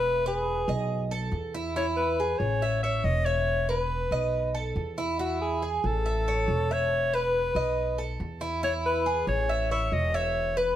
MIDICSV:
0, 0, Header, 1, 4, 480
1, 0, Start_track
1, 0, Key_signature, 4, "major"
1, 0, Tempo, 430108
1, 38, Time_signature, 4, 2, 24, 8
1, 12007, End_track
2, 0, Start_track
2, 0, Title_t, "Alto saxophone"
2, 0, Program_c, 0, 65
2, 0, Note_on_c, 0, 71, 114
2, 259, Note_off_c, 0, 71, 0
2, 305, Note_on_c, 0, 68, 100
2, 1206, Note_off_c, 0, 68, 0
2, 1970, Note_on_c, 0, 73, 91
2, 2075, Note_off_c, 0, 73, 0
2, 2194, Note_on_c, 0, 71, 100
2, 2658, Note_on_c, 0, 73, 106
2, 2674, Note_off_c, 0, 71, 0
2, 3147, Note_off_c, 0, 73, 0
2, 3155, Note_on_c, 0, 76, 104
2, 3397, Note_on_c, 0, 75, 113
2, 3414, Note_off_c, 0, 76, 0
2, 3628, Note_on_c, 0, 73, 117
2, 3645, Note_off_c, 0, 75, 0
2, 4112, Note_off_c, 0, 73, 0
2, 4129, Note_on_c, 0, 71, 94
2, 5038, Note_off_c, 0, 71, 0
2, 5798, Note_on_c, 0, 66, 91
2, 6020, Note_off_c, 0, 66, 0
2, 6041, Note_on_c, 0, 68, 91
2, 6536, Note_on_c, 0, 69, 103
2, 6552, Note_off_c, 0, 68, 0
2, 7504, Note_on_c, 0, 73, 123
2, 7521, Note_off_c, 0, 69, 0
2, 7978, Note_on_c, 0, 71, 102
2, 7995, Note_off_c, 0, 73, 0
2, 8927, Note_off_c, 0, 71, 0
2, 9642, Note_on_c, 0, 73, 98
2, 9748, Note_off_c, 0, 73, 0
2, 9886, Note_on_c, 0, 71, 93
2, 10327, Note_off_c, 0, 71, 0
2, 10357, Note_on_c, 0, 73, 104
2, 10803, Note_off_c, 0, 73, 0
2, 10845, Note_on_c, 0, 76, 108
2, 11080, Note_on_c, 0, 75, 105
2, 11097, Note_off_c, 0, 76, 0
2, 11329, Note_on_c, 0, 73, 103
2, 11346, Note_off_c, 0, 75, 0
2, 11800, Note_on_c, 0, 71, 89
2, 11817, Note_off_c, 0, 73, 0
2, 12007, Note_off_c, 0, 71, 0
2, 12007, End_track
3, 0, Start_track
3, 0, Title_t, "Cuban tres"
3, 0, Program_c, 1, 25
3, 0, Note_on_c, 1, 76, 78
3, 269, Note_off_c, 1, 76, 0
3, 290, Note_on_c, 1, 71, 83
3, 749, Note_off_c, 1, 71, 0
3, 767, Note_on_c, 1, 75, 76
3, 1228, Note_off_c, 1, 75, 0
3, 1242, Note_on_c, 1, 69, 83
3, 1705, Note_off_c, 1, 69, 0
3, 1724, Note_on_c, 1, 64, 93
3, 1953, Note_off_c, 1, 64, 0
3, 1966, Note_on_c, 1, 64, 92
3, 2427, Note_off_c, 1, 64, 0
3, 2452, Note_on_c, 1, 68, 72
3, 2910, Note_off_c, 1, 68, 0
3, 2926, Note_on_c, 1, 76, 78
3, 3154, Note_off_c, 1, 76, 0
3, 3167, Note_on_c, 1, 73, 76
3, 3627, Note_off_c, 1, 73, 0
3, 3638, Note_on_c, 1, 76, 78
3, 4103, Note_off_c, 1, 76, 0
3, 4116, Note_on_c, 1, 71, 84
3, 4582, Note_off_c, 1, 71, 0
3, 4599, Note_on_c, 1, 75, 76
3, 5063, Note_off_c, 1, 75, 0
3, 5073, Note_on_c, 1, 69, 76
3, 5540, Note_off_c, 1, 69, 0
3, 5556, Note_on_c, 1, 64, 89
3, 5782, Note_off_c, 1, 64, 0
3, 5795, Note_on_c, 1, 64, 92
3, 6261, Note_off_c, 1, 64, 0
3, 6276, Note_on_c, 1, 68, 69
3, 6742, Note_off_c, 1, 68, 0
3, 6759, Note_on_c, 1, 76, 71
3, 6991, Note_off_c, 1, 76, 0
3, 7007, Note_on_c, 1, 73, 77
3, 7467, Note_off_c, 1, 73, 0
3, 7488, Note_on_c, 1, 76, 74
3, 7948, Note_off_c, 1, 76, 0
3, 7963, Note_on_c, 1, 71, 81
3, 8425, Note_off_c, 1, 71, 0
3, 8438, Note_on_c, 1, 75, 75
3, 8903, Note_off_c, 1, 75, 0
3, 8909, Note_on_c, 1, 69, 74
3, 9378, Note_off_c, 1, 69, 0
3, 9386, Note_on_c, 1, 64, 97
3, 9618, Note_off_c, 1, 64, 0
3, 9631, Note_on_c, 1, 64, 98
3, 10099, Note_off_c, 1, 64, 0
3, 10112, Note_on_c, 1, 68, 74
3, 10579, Note_off_c, 1, 68, 0
3, 10595, Note_on_c, 1, 76, 75
3, 10828, Note_off_c, 1, 76, 0
3, 10841, Note_on_c, 1, 73, 84
3, 11304, Note_off_c, 1, 73, 0
3, 11319, Note_on_c, 1, 76, 80
3, 11783, Note_off_c, 1, 76, 0
3, 11795, Note_on_c, 1, 71, 83
3, 12007, Note_off_c, 1, 71, 0
3, 12007, End_track
4, 0, Start_track
4, 0, Title_t, "Upright bass"
4, 0, Program_c, 2, 32
4, 0, Note_on_c, 2, 28, 92
4, 690, Note_off_c, 2, 28, 0
4, 758, Note_on_c, 2, 35, 104
4, 1432, Note_off_c, 2, 35, 0
4, 1469, Note_on_c, 2, 40, 99
4, 2604, Note_off_c, 2, 40, 0
4, 2677, Note_on_c, 2, 33, 96
4, 3352, Note_off_c, 2, 33, 0
4, 3392, Note_on_c, 2, 28, 101
4, 4525, Note_off_c, 2, 28, 0
4, 4586, Note_on_c, 2, 35, 95
4, 5266, Note_off_c, 2, 35, 0
4, 5309, Note_on_c, 2, 40, 96
4, 6444, Note_off_c, 2, 40, 0
4, 6516, Note_on_c, 2, 33, 102
4, 7192, Note_off_c, 2, 33, 0
4, 7231, Note_on_c, 2, 28, 99
4, 8365, Note_off_c, 2, 28, 0
4, 8425, Note_on_c, 2, 35, 90
4, 9106, Note_off_c, 2, 35, 0
4, 9150, Note_on_c, 2, 40, 96
4, 10284, Note_off_c, 2, 40, 0
4, 10347, Note_on_c, 2, 33, 105
4, 11027, Note_off_c, 2, 33, 0
4, 11070, Note_on_c, 2, 28, 99
4, 12007, Note_off_c, 2, 28, 0
4, 12007, End_track
0, 0, End_of_file